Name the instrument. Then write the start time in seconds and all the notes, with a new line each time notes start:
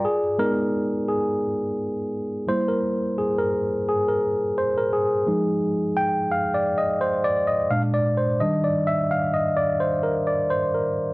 tine electric piano
Already playing: F4 D5
0.05 G#4
0.39 G#3 B3 D#4 A#4
1.09 G#4
2.48 G3 A#3 E4 C5
2.68 A#4
3.18 G#4
3.38 A#4
3.88 G#4
4.08 A#4
4.58 C5
4.78 A#4
4.93 G#4
5.27 F3 G#3 D#4
5.97 G5
6.32 F5
6.54 D5
6.78 D#5
7.01 C5
7.24 D5
7.47 D#5
7.71 A#2 G#3 D4 F5
7.94 D5
8.17 C5
8.40 D#3 G3 D4 D#5
8.64 D5
8.87 E5
9.11 F5
9.34 D#5
9.57 D5
9.80 C5
10.03 A#4
10.27 D5
10.50 C5
10.74 A#4